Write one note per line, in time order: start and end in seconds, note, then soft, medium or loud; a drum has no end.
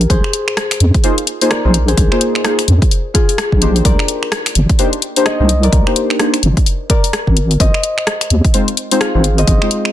0.00 0.15 G4 medium
0.00 1.50 A#4 medium
0.00 closed hi-hat soft
0.09 0.21 A#1 loud
0.09 1.87 G#4 medium
0.09 1.88 C5 loud
0.09 kick loud
0.09 closed hi-hat medium
0.24 finger snap soft
0.33 closed hi-hat loud
0.48 finger snap soft
0.57 cross-stick loud
0.57 closed hi-hat medium
0.71 finger snap soft
0.71 closed hi-hat medium
0.80 0.91 F2 loud
0.80 closed hi-hat loud
0.94 kick loud
0.94 closed hi-hat soft
1.04 1.15 A#3 medium
1.04 1.15 D#4 medium
1.04 1.15 F4 medium
1.04 1.15 G#4 medium
1.04 1.15 C5 loud
1.04 closed hi-hat medium
1.18 closed hi-hat medium
1.27 closed hi-hat loud
1.41 1.61 A#3 medium
1.41 1.61 D#4 medium
1.41 1.61 F4 medium
1.41 1.61 G#4 medium
1.41 1.61 C5 loud
1.41 closed hi-hat medium
1.50 3.62 A#4 medium
1.50 3.35 D5 medium
1.50 cross-stick loud
1.50 closed hi-hat medium
1.65 1.94 A#1 loud
1.65 1.72 A#3 medium
1.65 1.72 D#4 medium
1.65 1.72 F4 medium
1.65 1.72 G#4 medium
1.65 1.72 C5 medium
1.74 closed hi-hat loud
1.88 3.14 G#4 medium
1.88 3.86 C5 medium
1.88 closed hi-hat soft
1.97 2.09 A#1 loud
1.97 kick loud
1.97 closed hi-hat medium
2.12 2.42 A#3 medium
2.12 2.42 D#4 medium
2.12 2.42 F4 medium
2.12 2.42 G#4 medium
2.12 2.42 C5 medium
2.12 finger snap soft
2.21 closed hi-hat loud
2.35 finger snap soft
2.44 2.61 A#3 medium
2.44 2.61 D#4 medium
2.44 2.61 F4 medium
2.44 2.61 G#4 medium
2.44 2.61 C5 loud
2.44 cross-stick loud
2.44 closed hi-hat medium
2.59 finger snap soft
2.59 closed hi-hat medium
2.68 2.79 F2 loud
2.68 closed hi-hat loud
2.82 kick loud
2.82 closed hi-hat soft
2.91 closed hi-hat medium
3.14 5.66 F4 medium
3.14 5.42 G#4 medium
3.14 kick loud
3.14 closed hi-hat loud
3.29 closed hi-hat medium
3.38 cross-stick loud
3.38 closed hi-hat medium
3.52 3.82 A#1 medium
3.52 kick medium
3.62 4.77 A#3 medium
3.62 4.77 D4 medium
3.62 4.77 D#4 medium
3.62 4.77 G4 medium
3.62 4.77 C5 medium
3.62 closed hi-hat loud
3.76 closed hi-hat soft
3.85 3.96 C2 loud
3.85 5.63 A#4 medium
3.85 5.32 D5 loud
3.85 kick loud
3.85 closed hi-hat medium
3.99 finger snap soft
4.08 closed hi-hat loud
4.23 finger snap soft
4.32 cross-stick loud
4.32 closed hi-hat medium
4.46 finger snap soft
4.46 closed hi-hat medium
4.55 4.66 G1 loud
4.55 closed hi-hat loud
4.70 kick loud
4.70 closed hi-hat soft
4.79 4.90 A#3 medium
4.79 4.90 D4 medium
4.79 4.90 D#4 medium
4.79 4.90 G4 medium
4.79 4.90 C5 loud
4.79 closed hi-hat medium
4.93 closed hi-hat medium
5.02 closed hi-hat loud
5.16 5.36 A#3 medium
5.16 5.36 D4 medium
5.16 5.36 D#4 medium
5.16 5.36 G4 medium
5.16 5.36 C5 loud
5.16 closed hi-hat medium
5.25 7.23 C5 medium
5.25 5.69 D#5 loud
5.25 cross-stick loud
5.25 closed hi-hat medium
5.40 5.69 C2 loud
5.40 5.47 A#3 medium
5.40 5.47 D4 medium
5.40 5.47 D#4 medium
5.40 5.47 G4 medium
5.40 5.47 C5 medium
5.49 closed hi-hat loud
5.63 6.89 A#4 medium
5.63 6.90 D5 loud
5.63 closed hi-hat soft
5.73 5.84 C2 loud
5.73 kick loud
5.73 closed hi-hat medium
5.87 6.17 A#3 medium
5.87 6.17 D4 medium
5.87 6.17 D#4 medium
5.87 6.17 G4 medium
5.87 6.17 C5 medium
5.87 finger snap soft
5.96 closed hi-hat loud
6.10 finger snap soft
6.20 6.36 A#3 medium
6.20 6.36 D4 medium
6.20 6.36 D#4 medium
6.20 6.36 G4 medium
6.20 6.36 C5 loud
6.20 cross-stick loud
6.20 closed hi-hat medium
6.34 finger snap soft
6.34 closed hi-hat medium
6.43 6.54 G1 loud
6.43 closed hi-hat loud
6.57 kick loud
6.57 closed hi-hat soft
6.66 closed hi-hat medium
6.90 9.02 A#4 medium
6.90 7.67 D5 medium
6.90 kick loud
6.90 closed hi-hat loud
7.04 closed hi-hat medium
7.13 cross-stick loud
7.13 closed hi-hat medium
7.27 7.57 G#1 loud
7.27 kick medium
7.37 closed hi-hat loud
7.51 closed hi-hat soft
7.60 7.71 G#1 loud
7.60 9.38 C5 medium
7.60 9.38 D#5 loud
7.60 kick loud
7.60 closed hi-hat medium
7.74 finger snap soft
7.83 closed hi-hat loud
7.98 finger snap soft
8.07 cross-stick loud
8.07 closed hi-hat medium
8.21 finger snap soft
8.21 closed hi-hat medium
8.30 8.41 D#2 loud
8.30 closed hi-hat loud
8.45 kick loud
8.45 closed hi-hat soft
8.54 8.65 G#3 medium
8.54 8.65 C4 medium
8.54 8.65 D#4 medium
8.54 8.65 F4 medium
8.54 8.65 C5 loud
8.54 closed hi-hat medium
8.68 closed hi-hat medium
8.77 closed hi-hat loud
8.91 9.11 G#3 medium
8.91 9.11 C4 medium
8.91 9.11 D#4 medium
8.91 9.11 F4 medium
8.91 9.11 C5 loud
8.91 closed hi-hat medium
9.00 9.92 G#4 medium
9.00 9.92 F5 loud
9.00 cross-stick loud
9.00 closed hi-hat medium
9.15 9.44 G#1 medium
9.15 9.22 G#3 medium
9.15 9.22 C4 medium
9.15 9.22 D#4 medium
9.15 9.22 F4 medium
9.15 9.22 C5 medium
9.24 closed hi-hat loud
9.38 9.92 C5 medium
9.38 9.92 D#5 loud
9.38 closed hi-hat soft
9.47 9.59 G#1 loud
9.47 kick loud
9.47 closed hi-hat medium
9.62 9.92 G#3 medium
9.62 9.92 C4 medium
9.62 9.92 D#4 medium
9.62 9.92 F4 medium
9.62 9.92 C5 medium
9.62 finger snap soft
9.71 closed hi-hat loud
9.85 finger snap soft